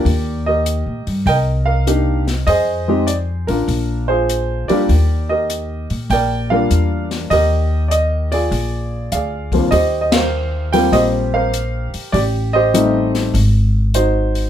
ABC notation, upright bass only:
X:1
M:4/4
L:1/8
Q:"Swing" 1/4=99
K:Eb
V:1 name="Upright bass" clef=bass
E,,2- (3E,, B,, G,, C,,4 | F,,3 =A,,, B,,,3 z | E,,3 B,, B,,,2 _F,,2 | E,,4 B,,,2 D,,2 |
E,,4 B,,,3 z | =A,,,4 _A,,,4 |]